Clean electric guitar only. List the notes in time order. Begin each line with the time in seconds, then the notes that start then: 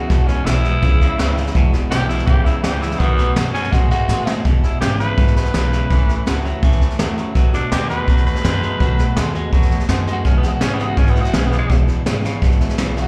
0.10 E2 B2
0.28 E2 B2
0.47 E2 B2
0.65 E2 B2
0.83 E2 C#3
1.02 E2 C#3
1.19 E2 C#3
1.38 E2 C#3
1.56 E2 B2
1.74 E2 B2
1.92 E2 B2
2.10 E2 B2
2.28 E2 C#3
2.46 E2 C#3
2.64 E2 C#3
2.82 E2 C#3
3.00 B2 F#3
3.19 B2 F#3
3.37 B2 F#3
3.54 B2 F#3
3.73 B2 G#3
3.91 B2 G#3
4.09 B2 G#3
4.27 B2 G#3
4.46 E2 B2
4.82 E2 C#3
5.00 E2 C#3
5.18 E2 B2
5.54 E2 C#3
5.73 E2 C#3
5.91 A2 E3
6.27 A2 F#3
6.45 A2 F#3
6.63 A2 E3
6.99 A2 F#3
7.18 A2 F#3
7.36 B2 F#3
7.72 B2 G#3
7.90 B2 G#3
8.09 B2 F#3
8.44 B2 G#3
8.62 B2 G#3
8.80 B2 F#3
9.16 B2 G#3
9.35 B2 G#3
9.53 B2 F#3
9.89 B2 G#3
10.07 B2 G#3
10.25 E2 B2
10.61 E2 C#3
10.80 E2 C#3
10.98 E2 B2
11.34 E2 C#3
11.52 E2 C#3
11.70 E2 B2
12.07 E2 C#3
12.25 E2 C#3
12.43 E2 B2
12.79 E2 C#3
12.96 E2 C#3